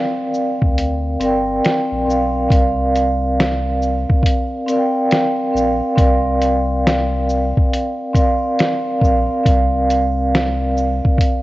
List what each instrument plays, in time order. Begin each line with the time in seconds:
Already playing: vibraphone C4 A#4 D5 F5
0.34 shaker
0.62 sub bass D2, kick
0.78 closed hi-hat
1.19 sub bass G1, vibraphone C4 A#4, closed hi-hat, shaker
1.24 vibraphone D5 G5
1.65 snare, closed hi-hat
1.92 sub bass A#1
2.05 sub bass B1, vibraphone C4 A#4 D5
2.10 vibraphone F5, shaker
2.49 sub bass C2, vibraphone C4 A#4 D5, kick, closed hi-hat
2.54 vibraphone F5
2.96 closed hi-hat, shaker
3.40 snare, closed hi-hat
3.82 shaker
4.10 kick
4.23 kick, closed hi-hat
4.66 vibraphone C4 A#4 D5, closed hi-hat, shaker
4.72 vibraphone F5
4.78 vibraphone G5
5.11 snare, closed hi-hat
5.52 sub bass A#1, vibraphone C4 A#4 D5
5.56 vibraphone F5, shaker
5.96 sub bass C2, vibraphone C4 A#4 D5, kick, closed hi-hat
6.01 vibraphone F5
6.42 closed hi-hat, shaker
6.87 snare, closed hi-hat
7.29 shaker
7.57 kick
7.73 closed hi-hat
8.13 vibraphone C4 A#4 D5, kick, closed hi-hat, shaker
8.18 vibraphone F5
8.59 snare, closed hi-hat
9.00 sub bass A#1, vibraphone C4 A#4 D5, kick, shaker
9.05 vibraphone F5
9.44 sub bass C2, vibraphone C4 A#4 D5, kick, closed hi-hat
9.49 vibraphone F5
9.90 closed hi-hat, shaker
10.35 snare, closed hi-hat
10.77 shaker
11.05 kick
11.18 kick, closed hi-hat